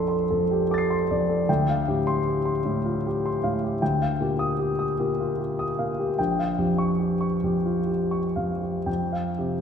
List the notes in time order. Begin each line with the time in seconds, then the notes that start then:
Already playing: A#1 F2 A4 D5 A5 C6
0.08 C6
0.30 F2 A4
0.51 G4
0.71 A4 D6 A6
0.78 C7
0.90 C6
1.11 F2 D5
1.29 A4
1.49 D2 G5
1.69 F5
1.88 A2 G4
2.07 C6
2.27 G4
2.45 C6
2.65 A2 G4
2.85 F4
3.07 G4
3.26 C6
3.44 A2 F5
3.64 G4
3.82 D2 G5
4.02 F5
4.21 A#2 G4
4.39 D#6
4.59 G4
4.79 D#6
4.99 A#2 G4
5.20 F4
5.39 G4
5.59 D#6
5.79 A#2 F5
5.99 G4
6.19 A#1 G5
6.39 F5
6.58 F2 G4
6.78 C#6
6.99 G4
7.21 C#6
7.44 F2 G4
7.66 F4
7.87 G4
8.11 C#6
8.36 F2 F5
8.62 G4
8.86 F2 G5
9.13 F5
9.39 C3 G4